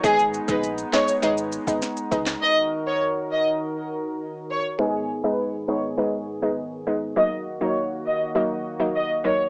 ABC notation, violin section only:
X:1
M:4/4
L:1/16
Q:1/4=101
K:G#m
V:1 name="Violin section"
G z2 B z2 c z8 z | d z2 c z2 d z6 z c z | G z2 B z2 c z8 z | d z2 c z2 d z4 z d z c z |]